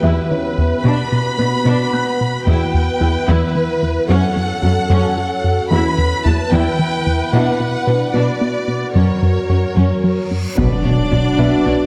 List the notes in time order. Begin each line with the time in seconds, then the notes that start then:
Already playing: B3 G4 A4 B4 E5 F#6
0.03 E2 E3 E4 B4 E5
0.31 E3 C#4 C#5
0.58 E2
0.84 B2 B3 D4 F#4 F#5 B5
1.12 B2
1.39 B2 D4 B4
1.66 B2 B3 D4 B4
1.93 B3 F#6
2.21 B2
2.47 E2 E3 E4 B4 E5 G5
2.74 E2
3.01 E2 E4
3.28 E2 E3 E4 B4
3.55 E3
3.83 E2
4.09 F#2 F#3 C#4 F#4 A4 C#5 F#5
4.36 F#2
4.63 F#2 C#4 F#4
4.90 F#2 F#3 C#4
5.17 F#3
5.44 F#2
5.71 E2 E3 B3 E4 B4 E5 B5
5.98 E2
6.25 E2 E4 A5
6.52 E2 E3 E4 G5
6.79 E3
7.06 E2
7.33 B2 B3 D4 E4 F#4 D5 E5 F#5
7.60 B2
7.87 B2 D4 B4
8.14 B2 B3 D4 D5
8.41 B3
8.68 B2
8.95 F#2 F#3 C#4 A#4 C#5, reverse cymbal
9.22 F#2
9.49 F#2 C#4 F#4
9.76 F#2 F#3 C#4
10.04 F#3
10.31 F#2
10.56 B1 B2 F#3 B3 D4 F#4 B4 D5, taiko, impact
10.85 B1 B2 D4 C#5
11.12 B1 B2 D4 D5
11.39 B1 B2 B3 B4 E5
11.65 B1 B2 D4 C#5